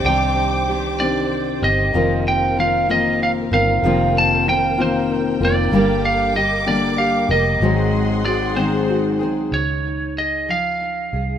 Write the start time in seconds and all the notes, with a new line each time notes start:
Already playing: D#4 G4 C5 G5 D6
0.04 C2 C3 D#3 C4 D4 G4 D5 G5
0.35 D#4
0.67 D#3 C4 D4 G4
0.99 C3 D#3 C4 D4 D#4 G4 D5
1.31 G4
1.62 G1 C4 G4 D#5
1.93 F1 F2 C3 D#3 F3 A#3 C4 F4 A#4 F5
2.26 C4 G5
2.57 D#3 A#3 C4 D#4 F4 F5
2.89 F2 C3 D#3 A#3 C4 F4 D#5
3.20 D#4 F5
3.51 G1 D#3 A#3 C4 F4 A#4 F5
3.83 F1 F2 C3 D#3 F3 A#3 C4 F4 A#4 G5
4.15 C4 A5
4.46 D#3 A#3 C4 D#4 F4 G5
4.78 F2 C3 D#3 A#3 C4 F4
4.82 C5
5.10 D#4
5.40 F1 D#3 A#3 C4 F4 A#4
5.45 D5
5.71 G1 G2 D3 G3 A#3 D4 G4 A#4 D6
6.05 F5
6.35 G3 A#3 G4 D#5
6.66 G2 D3 G3 A#3 D4 G4 D5
6.98 G4 F5
7.29 F1 G3 A#3 G4 A#4 D#5
7.60 G#1 G#2 D#3 F#3 G#3 C4 G#4 C5 F#5 C6
7.94 D#4
8.24 F#3 G#3 C4 F#4 G#4 D5
8.56 G#2 D#3 F#3 G#3 C4 D#4 G#4 C5
8.88 F#4
9.19 A#1 F#3 G#3 C4 G#4 C5
9.52 C#2 C#5
9.85 D#4
10.17 G#4 D#5
10.48 F3 F5
10.81 D#4
11.13 C2 G#4